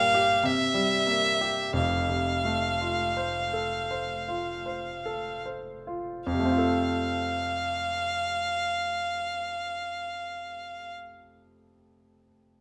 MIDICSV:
0, 0, Header, 1, 3, 480
1, 0, Start_track
1, 0, Key_signature, -1, "major"
1, 0, Tempo, 1209677
1, 179, Tempo, 1307190
1, 659, Time_signature, 3, 2, 24, 8
1, 659, Tempo, 1415094
1, 1139, Tempo, 1500000
1, 1619, Tempo, 1608579
1, 2099, Tempo, 1578947
1, 4022, End_track
2, 0, Start_track
2, 0, Title_t, "Violin"
2, 0, Program_c, 0, 40
2, 0, Note_on_c, 0, 77, 104
2, 177, Note_on_c, 0, 76, 98
2, 182, Note_off_c, 0, 77, 0
2, 658, Note_off_c, 0, 76, 0
2, 662, Note_on_c, 0, 77, 75
2, 1847, Note_off_c, 0, 77, 0
2, 2096, Note_on_c, 0, 77, 73
2, 3511, Note_off_c, 0, 77, 0
2, 4022, End_track
3, 0, Start_track
3, 0, Title_t, "Grand piano"
3, 0, Program_c, 1, 0
3, 0, Control_c, 1, 64, 127
3, 0, Note_on_c, 1, 46, 73
3, 0, Note_on_c, 1, 55, 55
3, 0, Note_on_c, 1, 58, 56
3, 57, Note_on_c, 1, 67, 55
3, 129, Note_off_c, 1, 58, 0
3, 164, Note_off_c, 1, 46, 0
3, 172, Note_on_c, 1, 48, 64
3, 178, Note_off_c, 1, 67, 0
3, 186, Control_c, 1, 64, 0
3, 190, Note_off_c, 1, 55, 0
3, 259, Control_c, 1, 64, 127
3, 287, Note_on_c, 1, 55, 52
3, 405, Note_on_c, 1, 58, 47
3, 481, Note_off_c, 1, 55, 0
3, 532, Note_on_c, 1, 67, 47
3, 605, Note_off_c, 1, 58, 0
3, 641, Note_off_c, 1, 48, 0
3, 649, Note_on_c, 1, 29, 50
3, 650, Note_on_c, 1, 41, 53
3, 658, Note_off_c, 1, 67, 0
3, 667, Control_c, 1, 64, 0
3, 745, Control_c, 1, 64, 127
3, 772, Note_on_c, 1, 48, 42
3, 893, Note_on_c, 1, 57, 48
3, 966, Note_off_c, 1, 48, 0
3, 1015, Note_on_c, 1, 65, 44
3, 1088, Note_off_c, 1, 57, 0
3, 1137, Note_on_c, 1, 72, 47
3, 1208, Note_off_c, 1, 65, 0
3, 1254, Note_on_c, 1, 69, 45
3, 1327, Note_off_c, 1, 72, 0
3, 1374, Note_on_c, 1, 72, 46
3, 1446, Note_off_c, 1, 69, 0
3, 1494, Note_on_c, 1, 65, 43
3, 1569, Note_off_c, 1, 72, 0
3, 1615, Note_on_c, 1, 72, 41
3, 1688, Note_off_c, 1, 65, 0
3, 1733, Note_on_c, 1, 69, 46
3, 1807, Note_off_c, 1, 72, 0
3, 1853, Note_on_c, 1, 72, 44
3, 1930, Note_off_c, 1, 69, 0
3, 1976, Note_on_c, 1, 65, 41
3, 2049, Note_off_c, 1, 72, 0
3, 2083, Note_off_c, 1, 29, 0
3, 2084, Note_off_c, 1, 41, 0
3, 2094, Note_on_c, 1, 41, 57
3, 2097, Note_off_c, 1, 65, 0
3, 2108, Control_c, 1, 64, 0
3, 2114, Note_on_c, 1, 48, 46
3, 2132, Note_on_c, 1, 57, 47
3, 2151, Note_on_c, 1, 60, 49
3, 2169, Control_c, 1, 64, 127
3, 2170, Note_on_c, 1, 65, 50
3, 2190, Note_on_c, 1, 69, 49
3, 3509, Note_off_c, 1, 41, 0
3, 3529, Note_off_c, 1, 48, 0
3, 3547, Note_off_c, 1, 57, 0
3, 3566, Note_off_c, 1, 60, 0
3, 3585, Note_off_c, 1, 65, 0
3, 3605, Note_off_c, 1, 69, 0
3, 4022, End_track
0, 0, End_of_file